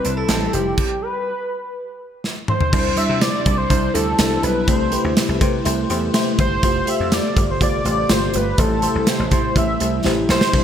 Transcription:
Already playing: fm electric piano G3 C4 E4 C5, clean electric guitar G3 C4, analog synth lead B4
0.04 slap bass C2, fm electric piano G3 C4 E4 C5, clean electric guitar D4, closed hi-hat
0.17 clean electric guitar E4, analog synth lead A4
0.29 slap bass A1, fm electric piano G3 C4 E4 A4, clean electric guitar C4, analog synth lead A4, snare, closed hi-hat
0.53 slap bass F1, fm electric piano G3 C4 E4 C5, clean electric guitar G3, analog synth lead G4, closed hi-hat
0.78 analog synth lead G4, kick, crash
1.02 analog synth lead B4
2.24 snare
2.48 analog synth lead C5, mid tom
2.60 floor tom
2.72 slap bass C2, string machine C3 G3 D4 E4, fm electric piano G3 D4 E4 C5, kick, crash
2.96 fm electric piano G3 D4 E4 C5, analog synth lead E5, closed hi-hat
3.09 slap bass C3
3.21 fm electric piano G3 D4 E4 C5, analog synth lead D5, snare, closed hi-hat, tambourine
3.45 slap bass C2, fm electric piano G3 D4 E4 C5, kick, closed hi-hat
3.58 analog synth lead C5
3.69 slap bass C2, fm electric piano G3 D4 E4 C5, analog synth lead C5, kick, closed hi-hat
3.94 slap bass D2, fm electric piano G3 D4 E4 C5, analog synth lead A4, closed hi-hat
4.18 slap bass C2, fm electric piano G3 D4 E4 C5, analog synth lead A4, snare, closed hi-hat, tambourine
4.43 slap bass B1, fm electric piano G3 D4 E4 C5, analog synth lead B4, closed hi-hat
4.68 slap bass C2, string machine C3 A3, fm electric piano A3 E4 G4 C5, analog synth lead C5, kick, closed hi-hat
4.92 fm electric piano A3 E4 G4 B4, closed hi-hat
5.04 slap bass D2
5.16 fm electric piano A3 E4 G4 C5, snare, closed hi-hat, tambourine
5.29 slap bass C2
5.41 slap bass C3, fm electric piano A3 E4 G4 C5, kick, closed hi-hat
5.65 slap bass C2, fm electric piano A3 E4 G4 C5, closed hi-hat
5.89 slap bass E2, fm electric piano A3 E4 G4 C5, closed hi-hat
6.14 fm electric piano A3 E4 G4 C5, snare, closed hi-hat, tambourine
6.38 slap bass G1, fm electric piano A3 E4 G4 C5, analog synth lead C5, kick, closed hi-hat
6.63 slap bass F1, string machine C3 G3 F4, fm electric piano A3 F4 G4 C5, kick, closed hi-hat
6.87 fm electric piano A3 F4 G4 C5, analog synth lead E5, closed hi-hat
7.00 slap bass F2
7.12 fm electric piano A3 F4 G4 C5, analog synth lead D5, snare, closed hi-hat, tambourine
7.36 slap bass G1, fm electric piano A3 F4 G4 C5, kick, closed hi-hat
7.51 analog synth lead C5
7.61 slap bass G1, fm electric piano A3 F4 G4 C5, analog synth lead D5, kick, closed hi-hat
7.85 slap bass A1, fm electric piano A3 F4 G4 C5, analog synth lead D5, closed hi-hat
8.09 slap bass G1, fm electric piano A3 F4 G4 C5, analog synth lead C5, snare, closed hi-hat, tambourine
8.34 slap bass G1, fm electric piano A3 F4 G4 C5, analog synth lead B4, closed hi-hat
8.58 slap bass A1, fm electric piano A3 E4 G4 C5, string machine E4, analog synth lead A4, kick, closed hi-hat
8.82 fm electric piano A3 E4 G4 C5, closed hi-hat
8.95 slap bass C2
9.07 fm electric piano A3 E4 G4 C5, analog synth lead C5, snare, closed hi-hat, tambourine
9.19 slap bass A1
9.31 slap bass A2, fm electric piano A3 E4 G4 C5, analog synth lead C5, kick, closed hi-hat
9.56 slap bass A1, fm electric piano A3 E4 G4 C5, analog synth lead E5, kick, closed hi-hat
9.80 slap bass C2, fm electric piano A3 E4 G4 C5, closed hi-hat
10.04 slap bass A1, fm electric piano A3 E4 G4 C5, snare
10.29 slap bass B1, fm electric piano A3 E4 G4 C5, analog synth lead C5, snare
10.41 snare
10.53 slap bass C2, string machine D3 C4, clean electric guitar E3, fm electric piano G3 D4 E4 C5, kick, splash

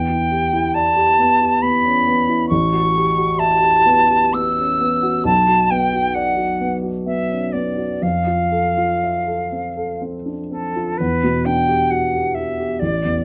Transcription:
Already playing: grand piano E2, flute G5
0.10 grand piano E4
0.31 grand piano G4
0.53 grand piano E4
0.74 grand piano D5, flute A5
0.96 grand piano G4
1.19 grand piano B3
1.41 grand piano G4
1.62 grand piano B3, flute B5
1.85 grand piano C#4
2.07 grand piano B3
2.29 grand piano E4
2.49 grand piano A1, flute C#6
2.73 grand piano F#4
2.95 grand piano G4
3.17 grand piano F#4
3.39 grand piano E5, flute A5
3.62 grand piano G4
3.86 grand piano B3
4.10 grand piano G4
4.33 grand piano B3, flute E6
4.58 grand piano C#4
4.81 grand piano B3
5.03 grand piano F#4
5.25 grand piano B1, flute A5
5.48 grand piano F#4
5.70 grand piano B3, flute G5
5.94 grand piano F#4
6.14 grand piano D5, flute F#5
6.36 grand piano F#4
6.61 grand piano B3
6.83 grand piano F#4
7.06 grand piano B3, flute E5
7.30 grand piano C#4
7.52 grand piano B3, flute D5
7.77 grand piano F#4
8.02 grand piano F2, flute F5
8.27 grand piano F4
8.52 grand piano A4
8.77 grand piano F4
9.04 grand piano E5
9.28 grand piano A4
9.52 grand piano C4
9.77 grand piano A4
10.01 grand piano C4
10.26 grand piano D4
10.50 grand piano C4, flute A4
10.76 grand piano F4
10.97 grand piano E2, flute B4
11.23 grand piano B2
11.45 grand piano D4, flute G5
11.69 grand piano G4
11.90 grand piano F#4, flute F#5
12.15 grand piano G4
12.34 grand piano F#4, flute E5
12.60 grand piano G4
12.79 grand piano A1, flute D5
13.04 grand piano E2

